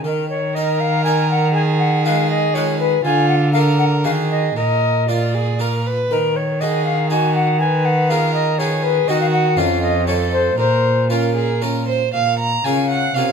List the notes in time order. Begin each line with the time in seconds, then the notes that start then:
0.03 D#3 A#4
0.30 C#5
0.55 D#4 A#4 D#5
0.80 F5
1.04 D#4 A#4 G#5
1.30 F#5
1.55 G#4 G#5
1.79 F#5
2.05 G#3 F4 B4 F5
2.30 D#5
2.54 G#3 F4 B4 C#5
2.79 B4
3.04 D3 F4 G#5
3.28 F#5
3.53 A#3 F4 A#4 F5
3.78 F#5
4.04 D#3 A#3 F#4 G#4 A#4 F5
4.31 D#5
4.56 A#2 A#4 D#5
5.08 A#3 F4 A#4 D5
5.34 G#4
5.59 A#3 F4 A#4
5.86 B4
6.10 D#3 A#4
6.36 C#5
6.60 A#3 D#4 F#4 G#4 D#5
6.85 F5
7.10 A#3 D#4 F#4 G#5
7.35 F#5
7.60 B4 G#5
7.85 F#5
8.09 B3 F4 G#4 A#4 F5
8.34 D#5
8.58 B3 F4 G#4 C#5
8.83 B4
9.08 D#3 C4 F#4 A#4 D#5
9.21 F5
9.32 F#5
9.57 F2 C#4 F4 A#4 F5
9.82 D#5
10.06 D#4 F4 A4 C#5
10.33 C5
10.58 A#2 A#4 C5
11.10 C#4 F4 A#4
11.35 G#4
11.62 C#4 F4 A#4
11.88 C5
12.13 A#2 F5
12.39 A#5
12.64 C#3 C#4 F4 A#4 F5 G#5
12.89 F#5
13.14 C3 C#4 F4 A#4 C#5 F5